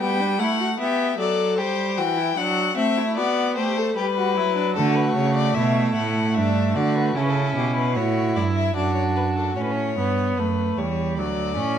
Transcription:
0.00 G3 B3 G5
0.20 D4
0.39 A3 E4 F#5
0.60 F#4
0.79 B3 G4 E5
1.18 F#3 A4 D5
1.58 G3 G4 C5
1.97 E3 F#4 G5
2.17 E4
2.37 F#3 D4 F#5
2.76 A3 C4 E5
2.97 E4
3.17 B3 F#4 D5
3.56 A3 G4 C5
3.77 A4
3.96 G3 G4 B4
4.17 F#4
4.37 F#3 E4
4.57 D4
4.76 D3 A3 F#4 A4
4.96 B4
5.16 C#3 C#5
5.35 D5
5.55 B2 E4 E5
5.95 A2 F#5
6.35 G2 D4 E5
6.76 D3 F#4 D5
6.95 B4
7.16 C#3 C#4 E4 A4
7.24 B4
7.30 A4
7.56 B2 G4
7.76 B4
7.96 A2 E4 F#4 C#5
8.36 G2 E4 D5
8.56 E5
8.76 F#2 D4 F#4 D5
8.95 C#5
9.16 B4
9.36 A4
9.56 A2 C#4 C#5
9.63 B4
9.70 C#5
9.97 G2 B3
10.37 F#2 A3 B4
10.78 E2 G3 C#5
11.17 D2 F#3 D5
11.57 A2 C#4

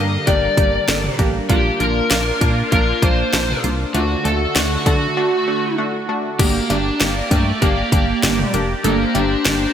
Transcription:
Already playing: G2 D3 G3 A#3 D4 G4 A#4 D#5
0.27 G1 A#3 D4 G4 D5, kick, closed hi-hat
0.57 G1 A#3 D4 G4, kick, closed hi-hat
0.88 G1 A#3 D4 A4, snare, closed hi-hat
1.04 mid tom
1.19 A1 A#3 D4 G4, kick, closed hi-hat
1.50 A#1 A#3 D4 F4 G4, kick, closed hi-hat
1.80 A#1 A#3 D4 F4 A#4, closed hi-hat
2.11 A#1 A#3 D4 F4, snare, closed hi-hat
2.41 A#2 A#3 D4 F4, kick, closed hi-hat
2.72 A#1 A#3 D4 F4 A#4, kick, closed hi-hat
3.02 A#1 A#3 D4 F4 C5, kick, closed hi-hat
3.33 A#1 A#3 D4 F4, snare, closed hi-hat
3.49 mid tom
3.64 C2 A#3 D4 F4, closed hi-hat
3.94 D2 D3 A3 D4 F#4, closed hi-hat
4.25 D2 A3 D4 A4, closed hi-hat
4.56 D2 A3 D4 F#4, snare, closed hi-hat
4.86 D3 A3 D4 F#4 A4, kick, closed hi-hat
5.17 A3 D4 F#4
5.48 A3 D4 F#4
5.78 A3 D4 F#4
6.09 A3 D4 F#4
6.39 G1 A#3 D4 G4 D5 A#5, kick, closed hi-hat, crash
6.70 G1 A#3 D4 G4, closed hi-hat, cowbell
7.01 G1 A#3 D4 G4, snare, closed hi-hat
7.31 G2 A3 A#3 D4 G4, kick, closed hi-hat
7.62 G1 A#3 D4 G4, kick, closed hi-hat
7.92 G1 A#3 D4 G4, kick, closed hi-hat
8.23 G1 A#3 D4 G4, snare, closed hi-hat
8.39 mid tom
8.54 F1 A#3 D4 G4, closed hi-hat
8.84 G1 A#3 D4 A4 C5, closed hi-hat
9.15 G1 A#3 D4 G4, closed hi-hat, cowbell
9.45 G1 A#3 D4 G4, snare, closed hi-hat

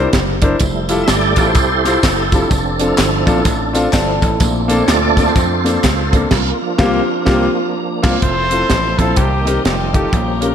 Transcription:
Already playing: C3
0.13 F#1, kick, snare, closed hi-hat
0.42 D4 E4 A#4 C5, kick, closed hi-hat
0.60 F1 G3 A3 E4, kick, closed hi-hat, tambourine
0.89 E4 F4 G4 A4, closed hi-hat, tambourine
1.03 E5
1.08 G1 G4 A4 D5, snare, clap, closed hi-hat, tambourine
1.36 A1 E4 F4 G4 A4, kick, snare, closed hi-hat, tambourine
1.46 E4 A4 C5
1.55 C2, kick, closed hi-hat, tambourine
1.85 E4 F4 G4 C5, snare, closed hi-hat, tambourine
2.03 F#1 G4, kick, snare, clap, closed hi-hat, tambourine
2.32 C4 D4 E4 F4 G4 A4, kick, closed hi-hat, tambourine
2.51 F1, kick, closed hi-hat, tambourine
2.79 F3 C4 D4 E4 F4 A4, closed hi-hat, tambourine
2.98 G1, snare, clap, closed hi-hat, tambourine
3.26 A#1 C4 D4 F4 A4, kick, closed hi-hat, tambourine
3.45 A1, kick, closed hi-hat, tambourine
3.73 C4 D4 F4 A4 F5, closed hi-hat, tambourine
3.93 G1 F3 C4 E4 A4 D5 A5, kick, snare, clap, closed hi-hat, tambourine
4.21 A1 E4 A4, kick, closed hi-hat, tambourine
4.40 A#1 A#2 A3 C4 D4, kick, closed hi-hat, tambourine
4.68 A#3 C4 D4 A4, closed hi-hat, tambourine
4.84 C#5
4.88 D2 F4 A4 D5, snare, clap, closed hi-hat, tambourine
5.16 A#3 C4 D4 A4, kick, snare, closed hi-hat, tambourine
5.27 F4 A4 C5
5.36 F2 A3 C4 D4, kick, closed hi-hat, tambourine
5.64 A#3 C4 D4 A4, snare, closed hi-hat, tambourine
5.84 C#2, kick, snare, clap, closed hi-hat, tambourine
6.12 A#3 C4 D4 A4 A#4, kick, closed hi-hat, tambourine
6.31 C2 A#3 F4, kick, snare, crash
6.62 F3 A#3 D4
6.78 C2 A#3 C4 F4 G4, kick, snare
7.25 C2 A#3 C4 F4 G4, kick, snare
8.03 C2 A#3 C4 F4, kick, snare, crash
8.22 F1 F3 A3 C4 E4 A4 C5 E5 A5, kick, closed hi-hat
8.50 C4 E4 F4 A4, closed hi-hat
8.70 A1, kick, snare, closed hi-hat
8.98 A#1 C4 E4 F4 A4 C5, kick, snare, closed hi-hat
9.16 C2 C3 D#3 G3 A#3 G4 D#5 G5 A#5, kick, closed hi-hat
9.45 C4 D#4 G4 A#4, snare, closed hi-hat
9.65 F1 A3 C4 F4 G4 F5 A5, snare, closed hi-hat
9.93 D#4 F4 G4 A4, kick, closed hi-hat
10.12 A#1 A#2 F3 A#3 C#4 G4 C#5 G5 A#5, kick, closed hi-hat
10.40 C#4 F4 G4 A#4, closed hi-hat

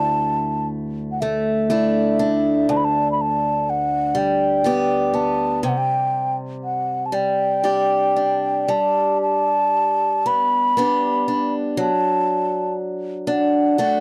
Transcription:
Already playing: D2 A3 E4 A5
1.11 F#5
1.21 A3 E5
1.70 A3 D4 E4
2.19 D4
2.69 D2 A5
2.77 B5
2.84 A5
3.12 B5
3.21 A5
3.70 F#5
4.15 G3 G5
4.64 G3 B3 G4
5.14 B3 A5
5.63 C3 G5
5.69 F#5
5.77 G5
6.64 F#5
7.06 A5
7.12 G3 G5
7.64 G3 D4 G4
8.16 D4
8.68 G3 A5
9.22 A5
10.26 B3 B5
10.77 B3 D4 G4
11.28 D4
11.77 F#3 A5
13.27 D4 F#5
13.78 A3 D4 F#4

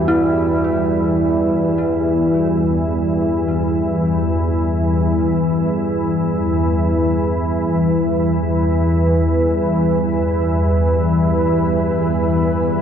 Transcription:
Already playing: E2 E3 G3 E4 F#4 A4 B4 E5
0.08 E4

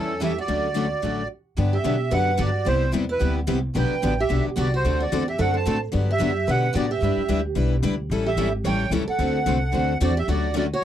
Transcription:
Already playing: E2 E3 G3 C#4 E4 A4
0.21 E3 G3 C#4 E4 G4 A4 E5
0.38 F#4 D5
0.48 D2 D3 F#3 A3 C#4 F#4 A4
0.74 D3 F#3 A3 C#4 F#4 A4
1.02 A1 D3 F#3 A3 C#4 F#4 A4
1.57 G2 D3 F#3 B3 D4 G4
1.73 G4 E5
1.84 B2 D3 F#3 B3 D4 G4
2.11 F#2 D3 F#3 B3 D4 G4 B4 F#5
2.37 G2 D3 F#3 B3 D4 F#4 G4 D5
2.66 C2 C3 G3 B3 E4 G4 C5
2.93 E2 C3 G3 B3 E4 G4
3.09 E4 B4
3.21 D2 C3 G3 B3 E4 G4
3.47 C2 C3 G3 B3 E4 G4
3.75 B1 D3 F#3 B3 D4 G4 B4 G5
3.91 muted upright bass stroke
4.03 A1 D3 F#3 B3 D4 G4
4.20 G4 E5
4.29 B1 D3 F#3 B3 D4 G4
4.57 C2 D3 F#3 B3 D4 F#4 G4 D5
4.74 F#4 C5
4.85 D2 D3 A3 C4 F#4 A4
5.00 F#4 D5
5.12 E2 D3 A3 C4 F#4 A4
5.28 G4 E5
5.39 F#2 D3 A3 C4 F#4 A4 F#5
5.54 C5 A5
5.66 A2 D3 A3 C4 F#4 A4
5.92 G2 D3 F#3 B3 D4 G4
6.11 G4 E5
6.20 F#2 D3 F#3 B3 D4 G4
6.48 B2 D3 F#3 B3 D4 G4 B4 F#5
6.75 A2 D3 F#3 B3 D4 F#4 G4 D5
6.91 G4 E5
7.02 G2 G3 D4 E4 B4
7.17 muted upright bass stroke
7.29 D2 G3 D4 E4 B4
7.55 B1 G3 D4 E4 B4
7.83 D2 G3 D4 E4 B4
8.10 A1 E3 G3 C#4 E4 A4
8.26 G4 E5
8.36 G#1 E3 G3 C#4 E4 A4
8.64 A1 E3 G3 C#4 E4 A4 C#5 G5
8.90 C#2 E3 G3 C#4 E4 A4
9.07 A4 F#5, muted upright bass stroke
9.19 D2 D3 A3 C4 F#4 A4
9.46 C2 D3 A3 C4 F#4 A4
9.72 D2 D3 A3 C4 F#4 A4
10.00 E2 D3 A3 C4 F#4 A4 D5
10.17 G4 E5
10.28 D2 D3 F#3 A3 C#4 F#4 A4 D5
10.54 D3 F#3 A3 C#4 F#4 A4
10.59 D5
10.73 F#4 C#5

